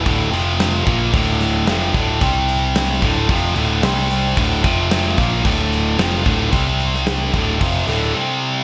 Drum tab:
HH |o-o-o-o-o-o-o-o-|o-o-o-o-o-o-o-o-|o-o-o-o-o-o-o-o-|o-o-o-o-o-o-----|
SD |----o-----o-o---|----o-------o---|----o-------o---|---oo-----o-----|
BD |o-----o-o-----o-|o-----o-o-------|o-o---o-o-----o-|o-----o-o-------|